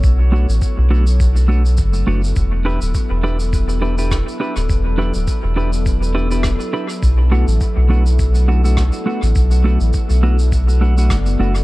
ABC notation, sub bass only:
X:1
M:4/4
L:1/16
Q:"Swing 16ths" 1/4=103
K:Bm
V:1 name="Sub bass" clef=bass
B,,,3 A,,, z B,,,6- B,,, F,,,2 F,,,2 | E,,,3 D,,, z E,,,8 z2 D,,, | E,,,3 D,,, z E,,,8 z3 | B,,,3 A,,, z B,,,8 z2 A,,, |
B,,,3 A,,, z B,,,6- B,,, F,,,2 F,,,2 |]